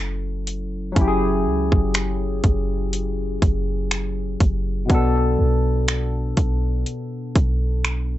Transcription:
0, 0, Header, 1, 4, 480
1, 0, Start_track
1, 0, Key_signature, 3, "minor"
1, 0, Tempo, 983607
1, 470, Time_signature, 4, 2, 24, 8
1, 3993, End_track
2, 0, Start_track
2, 0, Title_t, "Tine electric piano"
2, 0, Program_c, 0, 4
2, 0, Control_c, 0, 64, 127
2, 0, Note_on_c, 0, 54, 77
2, 0, Note_on_c, 0, 61, 68
2, 0, Note_on_c, 0, 64, 71
2, 0, Note_on_c, 0, 69, 80
2, 440, Note_off_c, 0, 54, 0
2, 447, Note_off_c, 0, 61, 0
2, 449, Note_on_c, 0, 54, 73
2, 455, Note_off_c, 0, 64, 0
2, 462, Note_off_c, 0, 69, 0
2, 464, Note_on_c, 0, 61, 69
2, 478, Note_on_c, 0, 64, 69
2, 494, Note_on_c, 0, 67, 70
2, 516, Note_off_c, 0, 67, 0
2, 525, Note_on_c, 0, 68, 84
2, 2360, Note_off_c, 0, 54, 0
2, 2368, Note_off_c, 0, 61, 0
2, 2369, Note_on_c, 0, 47, 75
2, 2375, Note_off_c, 0, 64, 0
2, 2384, Note_on_c, 0, 59, 69
2, 2397, Control_c, 0, 64, 0
2, 2398, Note_off_c, 0, 68, 0
2, 2398, Note_on_c, 0, 62, 68
2, 2413, Note_on_c, 0, 69, 85
2, 2487, Control_c, 0, 64, 127
2, 3993, Note_off_c, 0, 47, 0
2, 3993, Note_off_c, 0, 59, 0
2, 3993, Note_off_c, 0, 62, 0
2, 3993, Note_off_c, 0, 69, 0
2, 3993, End_track
3, 0, Start_track
3, 0, Title_t, "808-style bass"
3, 0, Program_c, 1, 38
3, 0, Note_on_c, 1, 30, 107
3, 451, Note_off_c, 1, 30, 0
3, 470, Note_on_c, 1, 30, 101
3, 710, Note_on_c, 1, 37, 94
3, 717, Note_off_c, 1, 30, 0
3, 833, Note_off_c, 1, 37, 0
3, 840, Note_on_c, 1, 30, 99
3, 1176, Note_off_c, 1, 30, 0
3, 1190, Note_on_c, 1, 30, 96
3, 1651, Note_off_c, 1, 30, 0
3, 1670, Note_on_c, 1, 30, 101
3, 2131, Note_off_c, 1, 30, 0
3, 2150, Note_on_c, 1, 30, 93
3, 2380, Note_off_c, 1, 30, 0
3, 2390, Note_on_c, 1, 35, 108
3, 2621, Note_off_c, 1, 35, 0
3, 2631, Note_on_c, 1, 35, 98
3, 3091, Note_off_c, 1, 35, 0
3, 3110, Note_on_c, 1, 35, 98
3, 3340, Note_off_c, 1, 35, 0
3, 3590, Note_on_c, 1, 35, 99
3, 3993, Note_off_c, 1, 35, 0
3, 3993, End_track
4, 0, Start_track
4, 0, Title_t, "Drums"
4, 230, Note_on_c, 9, 42, 68
4, 279, Note_off_c, 9, 42, 0
4, 470, Note_on_c, 9, 36, 114
4, 470, Note_on_c, 9, 42, 64
4, 519, Note_off_c, 9, 36, 0
4, 519, Note_off_c, 9, 42, 0
4, 839, Note_on_c, 9, 36, 93
4, 888, Note_off_c, 9, 36, 0
4, 948, Note_on_c, 9, 42, 76
4, 951, Note_on_c, 9, 26, 113
4, 997, Note_off_c, 9, 42, 0
4, 1000, Note_off_c, 9, 26, 0
4, 1189, Note_on_c, 9, 42, 60
4, 1190, Note_on_c, 9, 36, 78
4, 1238, Note_off_c, 9, 36, 0
4, 1238, Note_off_c, 9, 42, 0
4, 1430, Note_on_c, 9, 42, 74
4, 1479, Note_off_c, 9, 42, 0
4, 1669, Note_on_c, 9, 36, 88
4, 1670, Note_on_c, 9, 42, 59
4, 1718, Note_off_c, 9, 36, 0
4, 1719, Note_off_c, 9, 42, 0
4, 1909, Note_on_c, 9, 26, 104
4, 1909, Note_on_c, 9, 42, 71
4, 1958, Note_off_c, 9, 26, 0
4, 1958, Note_off_c, 9, 42, 0
4, 2149, Note_on_c, 9, 36, 95
4, 2149, Note_on_c, 9, 42, 73
4, 2198, Note_off_c, 9, 36, 0
4, 2198, Note_off_c, 9, 42, 0
4, 2389, Note_on_c, 9, 36, 113
4, 2389, Note_on_c, 9, 42, 61
4, 2438, Note_off_c, 9, 36, 0
4, 2438, Note_off_c, 9, 42, 0
4, 2869, Note_on_c, 9, 42, 70
4, 2871, Note_on_c, 9, 26, 116
4, 2918, Note_off_c, 9, 42, 0
4, 2920, Note_off_c, 9, 26, 0
4, 3109, Note_on_c, 9, 36, 80
4, 3109, Note_on_c, 9, 42, 61
4, 3158, Note_off_c, 9, 36, 0
4, 3158, Note_off_c, 9, 42, 0
4, 3349, Note_on_c, 9, 42, 74
4, 3398, Note_off_c, 9, 42, 0
4, 3589, Note_on_c, 9, 36, 97
4, 3589, Note_on_c, 9, 42, 60
4, 3638, Note_off_c, 9, 36, 0
4, 3638, Note_off_c, 9, 42, 0
4, 3828, Note_on_c, 9, 42, 68
4, 3829, Note_on_c, 9, 26, 103
4, 3877, Note_off_c, 9, 42, 0
4, 3878, Note_off_c, 9, 26, 0
4, 3993, End_track
0, 0, End_of_file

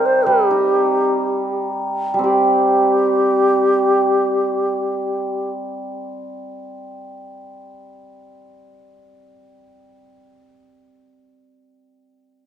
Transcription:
0, 0, Header, 1, 3, 480
1, 0, Start_track
1, 0, Tempo, 500000
1, 11964, End_track
2, 0, Start_track
2, 0, Title_t, "Xiao"
2, 0, Program_c, 0, 77
2, 55, Note_on_c, 0, 72, 72
2, 247, Note_on_c, 0, 67, 68
2, 261, Note_off_c, 0, 72, 0
2, 1620, Note_off_c, 0, 67, 0
2, 2147, Note_on_c, 0, 67, 66
2, 5284, Note_off_c, 0, 67, 0
2, 11964, End_track
3, 0, Start_track
3, 0, Title_t, "Hammered dulcimer"
3, 0, Program_c, 1, 15
3, 0, Note_on_c, 1, 48, 56
3, 0, Note_on_c, 1, 55, 42
3, 0, Note_on_c, 1, 60, 42
3, 0, Note_on_c, 1, 63, 38
3, 0, Note_on_c, 1, 67, 34
3, 241, Note_off_c, 1, 55, 0
3, 252, Note_on_c, 1, 55, 50
3, 475, Note_off_c, 1, 63, 0
3, 486, Note_on_c, 1, 63, 36
3, 690, Note_off_c, 1, 60, 0
3, 1135, Note_off_c, 1, 48, 0
3, 1146, Note_off_c, 1, 67, 0
3, 2042, Note_off_c, 1, 55, 0
3, 2053, Note_on_c, 1, 55, 42
3, 2100, Note_on_c, 1, 60, 43
3, 2146, Note_on_c, 1, 67, 40
3, 2429, Note_off_c, 1, 63, 0
3, 7268, Note_off_c, 1, 67, 0
3, 8628, Note_off_c, 1, 60, 0
3, 9816, Note_off_c, 1, 55, 0
3, 11964, End_track
0, 0, End_of_file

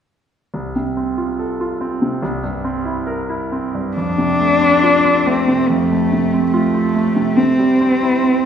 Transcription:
0, 0, Header, 1, 3, 480
1, 0, Start_track
1, 0, Key_signature, -1, "major"
1, 0, Tempo, 868307
1, 295, Time_signature, 4, 2, 24, 8
1, 771, Tempo, 834492
1, 1731, Tempo, 875912
1, 3171, Tempo, 845070
1, 4741, End_track
2, 0, Start_track
2, 0, Title_t, "Cello"
2, 0, Program_c, 0, 42
2, 2228, Note_on_c, 0, 62, 57
2, 2938, Note_on_c, 0, 60, 42
2, 2946, Note_off_c, 0, 62, 0
2, 3171, Note_on_c, 0, 57, 50
2, 3179, Note_off_c, 0, 60, 0
2, 3640, Note_off_c, 0, 57, 0
2, 3644, Note_on_c, 0, 57, 51
2, 4123, Note_on_c, 0, 60, 54
2, 4131, Note_off_c, 0, 57, 0
2, 4741, Note_off_c, 0, 60, 0
2, 4741, End_track
3, 0, Start_track
3, 0, Title_t, "Grand piano"
3, 0, Program_c, 1, 0
3, 297, Note_on_c, 1, 36, 28
3, 404, Control_c, 1, 64, 127
3, 419, Note_on_c, 1, 48, 26
3, 535, Note_on_c, 1, 60, 28
3, 609, Note_off_c, 1, 48, 0
3, 651, Note_on_c, 1, 65, 26
3, 724, Note_off_c, 1, 60, 0
3, 770, Note_on_c, 1, 69, 29
3, 842, Note_off_c, 1, 65, 0
3, 893, Note_on_c, 1, 65, 33
3, 962, Note_off_c, 1, 69, 0
3, 1009, Note_on_c, 1, 60, 32
3, 1082, Note_off_c, 1, 65, 0
3, 1129, Note_on_c, 1, 48, 33
3, 1199, Note_off_c, 1, 60, 0
3, 1225, Note_off_c, 1, 36, 0
3, 1247, Note_off_c, 1, 48, 0
3, 1248, Note_on_c, 1, 36, 45
3, 1255, Control_c, 1, 64, 0
3, 1353, Control_c, 1, 64, 127
3, 1371, Note_on_c, 1, 43, 33
3, 1490, Note_on_c, 1, 60, 37
3, 1561, Note_off_c, 1, 43, 0
3, 1609, Note_on_c, 1, 64, 35
3, 1684, Note_off_c, 1, 60, 0
3, 1733, Note_on_c, 1, 70, 38
3, 1805, Note_off_c, 1, 64, 0
3, 1857, Note_on_c, 1, 64, 36
3, 1929, Note_off_c, 1, 70, 0
3, 1982, Note_on_c, 1, 60, 30
3, 2056, Note_off_c, 1, 64, 0
3, 2106, Note_on_c, 1, 43, 27
3, 2179, Note_off_c, 1, 60, 0
3, 2204, Note_off_c, 1, 36, 0
3, 2226, Note_off_c, 1, 43, 0
3, 2226, Note_on_c, 1, 41, 29
3, 2236, Control_c, 1, 64, 0
3, 2322, Control_c, 1, 64, 127
3, 2344, Note_on_c, 1, 48, 25
3, 2464, Note_on_c, 1, 57, 30
3, 2533, Note_off_c, 1, 48, 0
3, 2580, Note_on_c, 1, 60, 28
3, 2652, Note_off_c, 1, 57, 0
3, 2698, Note_on_c, 1, 65, 30
3, 2769, Note_off_c, 1, 60, 0
3, 2818, Note_on_c, 1, 60, 31
3, 2887, Note_off_c, 1, 65, 0
3, 2937, Note_on_c, 1, 57, 29
3, 3007, Note_off_c, 1, 60, 0
3, 3055, Note_on_c, 1, 48, 31
3, 3126, Note_off_c, 1, 57, 0
3, 3150, Note_off_c, 1, 41, 0
3, 3175, Note_on_c, 1, 41, 34
3, 3246, Note_off_c, 1, 48, 0
3, 3301, Note_on_c, 1, 57, 28
3, 3417, Note_on_c, 1, 48, 30
3, 3488, Note_off_c, 1, 57, 0
3, 3537, Note_on_c, 1, 60, 29
3, 3605, Note_off_c, 1, 48, 0
3, 3652, Note_on_c, 1, 65, 37
3, 3724, Note_off_c, 1, 60, 0
3, 3768, Note_on_c, 1, 60, 34
3, 3840, Note_off_c, 1, 65, 0
3, 3884, Note_on_c, 1, 57, 31
3, 3958, Note_off_c, 1, 60, 0
3, 4005, Note_on_c, 1, 48, 32
3, 4077, Note_off_c, 1, 57, 0
3, 4106, Note_off_c, 1, 41, 0
3, 4117, Note_off_c, 1, 48, 0
3, 4126, Note_on_c, 1, 48, 32
3, 4136, Control_c, 1, 64, 0
3, 4217, Control_c, 1, 64, 127
3, 4250, Note_on_c, 1, 55, 31
3, 4374, Note_on_c, 1, 60, 32
3, 4444, Note_off_c, 1, 55, 0
3, 4498, Note_on_c, 1, 64, 34
3, 4566, Note_off_c, 1, 60, 0
3, 4614, Note_on_c, 1, 60, 30
3, 4687, Note_off_c, 1, 64, 0
3, 4741, Note_off_c, 1, 48, 0
3, 4741, Note_off_c, 1, 60, 0
3, 4741, End_track
0, 0, End_of_file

